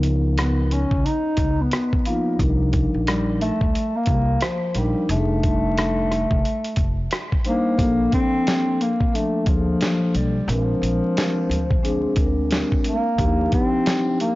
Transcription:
Already playing: C#2 F3 B3 D#4 A#4
0.03 closed hi-hat
0.38 B3, cross-stick, closed hi-hat
0.71 C#4, closed hi-hat
0.91 C#2, kick
1.06 D#4, closed hi-hat
1.37 C#2, kick, closed hi-hat
1.61 B3
1.71 cross-stick, closed hi-hat
1.93 kick
2.05 F3 A#3 B3 D#4 F4, closed hi-hat
2.39 C2 F3 D4 D#4 A#4, kick, closed hi-hat
2.73 kick, closed hi-hat
2.94 A#1
3.07 G3, cross-stick, closed hi-hat
3.41 A3, closed hi-hat
3.61 D2, kick
3.75 closed hi-hat
3.97 A#3
4.06 C2, kick, closed hi-hat
4.41 F3, cross-stick, closed hi-hat
4.75 A#1 F3 G3 D4 D#4 A#4, closed hi-hat
5.09 F1 G3 A3 D4 D#4 G#4, closed hi-hat
5.17 A4
5.43 kick, closed hi-hat
5.77 cross-stick, closed hi-hat
6.11 cross-stick, closed hi-hat
6.31 F1, kick
6.45 closed hi-hat
6.65 closed hi-hat
6.76 F1, kick, closed hi-hat
7.11 cross-stick, closed hi-hat
7.32 kick
7.44 G3 A#3 D4 D#4 C5, closed hi-hat
7.78 A#1 F3 A#3 D4 A4, kick, closed hi-hat
8.12 C4, kick, closed hi-hat
8.47 snare, closed hi-hat
8.81 A#3, closed hi-hat
9.00 kick
9.12 F3 A3 A#3 D4 A4, closed hi-hat
9.46 D2 F3 A#3 D4 G#4, kick, closed hi-hat
9.55 A4
9.81 snare, closed hi-hat
10.14 B1 G3, closed hi-hat
10.48 A#1 F3 G#3 C4 D4 A#4, closed hi-hat
10.82 A#1, closed hi-hat
11.17 snare, closed hi-hat
11.49 D2, closed hi-hat
11.71 kick
11.83 G#3 C4 D4 G#4, closed hi-hat
12.16 D2 G#3 C4 D4 A#4, kick, closed hi-hat
12.51 snare, closed hi-hat
12.72 kick
12.84 A#3, closed hi-hat
13.18 D#2 F3 D4 D#4 G4, kick, closed hi-hat
13.52 C4, kick, closed hi-hat
13.86 snare, closed hi-hat
14.20 A#3, closed hi-hat

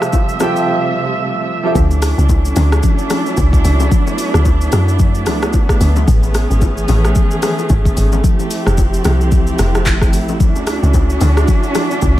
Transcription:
Already playing: C3 F3 G3 A3 F4 G4 A4 E5
0.02 cross-stick, shaker
0.13 kick, high bongo, shaker
0.29 shaker
0.39 F3 F4 G4 A4 G5, cross-stick, low bongo, shaker
0.56 shaker
1.63 F3 F4 G4 A4 E5
1.75 D2 F#3 A3 C#4 D4 E4, kick, low conga, shaker
1.91 low bongo, shaker
2.02 cross-stick, open hi-hat, shaker
2.18 C#2, shaker
2.29 kick, high bongo, shaker
2.45 shaker
2.56 D2, open hi-hat, low bongo, shaker
2.72 cross-stick, shaker
2.83 kick, low conga, shaker
2.98 shaker
3.10 cross-stick, open hi-hat, high bongo, low bongo, low conga, shaker
3.26 high bongo, shaker
3.37 C#2, kick, high bongo, shaker
3.53 kick, shaker
3.65 C#2, open hi-hat, shaker
3.80 low bongo, shaker
3.91 B3, kick, low conga, shaker
4.07 low bongo, shaker
4.18 open hi-hat, shaker
4.34 D2, cross-stick, shaker
4.45 kick, high bongo, shaker
4.61 shaker
4.72 F#2, cross-stick, open hi-hat, low bongo, shaker
4.88 shaker
4.99 kick, low conga, shaker
5.15 shaker
5.26 C#2, cross-stick, open hi-hat, high bongo, low bongo, low conga, shaker
5.42 cross-stick, high bongo, shaker
5.53 kick, high bongo, shaker
5.69 kick, cross-stick, shaker
5.81 D2, open hi-hat, shaker
5.96 low bongo, shaker
6.08 A1 E3 C#4 G#4, kick, low conga, shaker
6.23 low bongo, shaker
6.34 cross-stick, open hi-hat, shaker
6.50 G#1, shaker
6.61 kick, high bongo, shaker
6.77 shaker
6.88 A1, open hi-hat, low bongo, shaker
7.05 cross-stick, shaker
7.15 kick, low conga, shaker
7.31 shaker
7.42 cross-stick, open hi-hat, high bongo, low bongo, low conga, shaker
7.58 high bongo, shaker
7.69 G#1, kick, high bongo, shaker
7.85 kick, shaker
7.97 G#1, open hi-hat, shaker
8.12 low bongo, shaker
8.24 F3 C4 E4 G4, kick, low conga, shaker
8.39 low bongo, shaker
8.51 open hi-hat, shaker
8.67 F1, cross-stick, shaker
8.77 kick, high bongo, shaker
8.94 shaker
9.04 C2, cross-stick, open hi-hat, low bongo, shaker
9.21 shaker
9.31 kick, low conga, shaker
9.47 shaker
9.59 F1, cross-stick, open hi-hat, high bongo, low bongo, low conga, shaker
9.75 cross-stick, high bongo, shaker
9.85 kick, clap, high bongo, shaker
10.02 kick, cross-stick, shaker
10.13 A1, open hi-hat, shaker
10.28 low bongo, shaker
10.40 D2 C#4 D4 F#4, kick, low conga, shaker
10.56 low bongo, shaker
10.67 cross-stick, open hi-hat, shaker
10.83 C#2, shaker
10.94 kick, high bongo, shaker
11.10 shaker
11.21 D2, open hi-hat, low bongo, shaker
11.37 cross-stick, shaker
11.48 kick, low conga, shaker
11.63 shaker
11.75 cross-stick, open hi-hat, high bongo, low bongo, low conga, shaker
11.91 high bongo, shaker
12.02 C#2, kick, high bongo, shaker

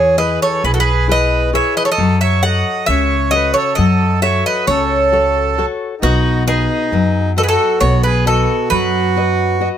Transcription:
Already playing: E2 E3 G#4 C#5
0.17 E4 G#4 B4 D#5
0.42 A4 C#5
0.64 B1 B2 G#4 B4
0.74 F#4 A4
0.79 G#4 B4
1.08 E4 G#4 B4 D#5
1.53 E4 G#4 B4 C#5 E5
1.77 B4 D#5
1.85 A4 C#5
1.91 A4 D#5
1.98 F#2 F#3
2.21 C#5 E5
2.43 F#4 A4 C#5 D#5 F#5
2.86 C#2 C#3 C#5 E5
3.31 F#4 A4 C#5 D#5
3.35 B4
3.54 A4 C#5
3.75 F#2 F#3 A4 D#5
4.22 F#4 A4 C#5 E5
4.46 B4 D#5
4.67 C#2 C#3 A4 C#5
5.12 F#4 A4 C#5
5.58 F#4 A4 C#5
6.01 B1 B3 D#4 F#4
6.47 D#4 F#4 G#4 B4 D#5
6.92 F#2 F#3
7.37 F#4 A4 B4 D#5
7.43 G#4 B4
7.49 F#4 A4
7.81 B1 B3 F#4 C#5
8.03 G#4 B4
8.25 F#4 A4 B4 D#5
8.70 F#2 F#3 F#4 B4
9.16 F#4 B4 D#5
9.61 F#4 B4 D#5

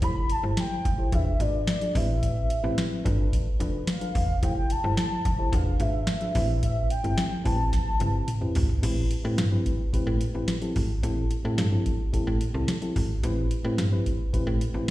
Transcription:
0.02 F1 E4 G4 A4 C5 B5, kick, closed hi-hat
0.30 A5, closed hi-hat
0.43 G1 E4 G4 A4 C5
0.57 G5, snare, closed hi-hat
0.85 F1, kick, closed hi-hat
0.98 E4 G4 A4 C5
1.12 E1 D4 F4 G#4 B4 E5, kick, closed hi-hat
1.39 G#1 D4 F4 G#4 B4 D5, closed hi-hat
1.67 snare, closed hi-hat
1.81 D4 F4 G#4 D5, closed hi-hat
1.94 A1 C4 E4 G4 B4 E5, kick, open hi-hat
2.23 kick, closed hi-hat
2.50 closed hi-hat
2.63 A1 C4 E4 G4 B4
2.78 snare, closed hi-hat
3.04 G1 D4 F4 A4 B4, kick, closed hi-hat
3.33 kick, closed hi-hat
3.60 F1 D4 F4 A4 B4, closed hi-hat
3.87 F5, snare, closed hi-hat
4.01 D4 F4 A4 B4, closed hi-hat
4.15 E1, kick, open hi-hat
4.42 F1 E4 G4 A4 C5 G5, kick, closed hi-hat
4.70 A5, closed hi-hat
4.84 G1 E4 G4 A4 C5
4.97 snare, closed hi-hat
5.25 F1, kick, closed hi-hat
5.39 E4 G4 A4 C5
5.52 E1 D4 F4 G#4 B4 F5, kick, closed hi-hat
5.80 G#1 D4 F4 G#4 B4 E5, closed hi-hat
6.07 snare, closed hi-hat
6.21 D4 F4 G#4 B4, closed hi-hat
6.34 A1 C4 E4 G4 B4, kick, open hi-hat
6.63 E5, kick, closed hi-hat
6.90 G5, closed hi-hat
7.03 G1 C4 E4 G4 A4, closed hi-hat
7.18 snare, closed hi-hat
7.44 A1 C4 E4 G4 B4 A5, kick, open hi-hat
7.73 kick, snare, closed hi-hat
8.00 G1 C4 E4 G4 B4, closed hi-hat, high tom
8.28 closed hi-hat, mid tom
8.41 C4 E4 G4 B4, mid tom
8.55 G#1, floor tom, open hi-hat
8.69 floor tom
8.82 A1 C4 E4 G4 B4, kick, closed hi-hat, crash
9.11 closed hi-hat
9.24 A2 C4 E4 G4 B4
9.38 G2, snare, closed hi-hat
9.51 C4 E4 G4 B4
9.66 kick, closed hi-hat
9.93 A2 C4 E4 G4 B4, kick, closed hi-hat
10.07 A2
10.21 closed hi-hat
10.34 A1 C4 E4 G4 B4
10.48 snare, closed hi-hat
10.61 C4 E4 G4 A4, closed hi-hat
10.76 G#1, kick, open hi-hat
11.03 A1 C4 E4 G4 A4, kick, closed hi-hat
11.31 closed hi-hat
11.44 A2 C4 E4 G4 A4
11.58 G2, snare, closed hi-hat
11.72 C4 E4 G4 A4
11.86 kick, closed hi-hat
12.13 A2 C4 E4 G4 A4, kick, closed hi-hat
12.27 A2
12.41 closed hi-hat
12.54 C2 C4 E4 G4 A4
12.68 snare, closed hi-hat
12.82 C4 E4 G4 A4, closed hi-hat
12.96 G#1, kick, open hi-hat
13.23 A1 C4 E4 G4 B4, kick, closed hi-hat
13.51 closed hi-hat
13.64 A2 C4 E4 G4 B4
13.78 G2, snare, closed hi-hat
13.92 C4 E4 G4 B4
14.06 kick, closed hi-hat
14.33 A2 C4 E4 G4 B4, kick, closed hi-hat
14.47 A2
14.61 closed hi-hat
14.74 A1 C4 E4 G4 B4

